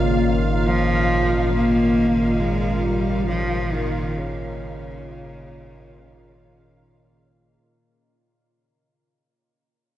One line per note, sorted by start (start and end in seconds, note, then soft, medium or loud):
0.00 7.58 G#1 medium
0.00 7.62 A#2 medium
0.00 7.62 C#3 medium
0.00 7.64 D#3 medium
0.00 0.23 A#3 medium
0.00 7.63 A#3 medium
0.00 7.62 F4 medium
0.00 7.65 F5 medium
0.67 1.50 F3 medium
1.54 2.42 A#3 loud
2.40 2.86 G#3 medium
2.85 3.28 G3 medium
3.28 3.74 F3 medium
3.73 4.17 D#3 medium
4.16 6.76 C#3 medium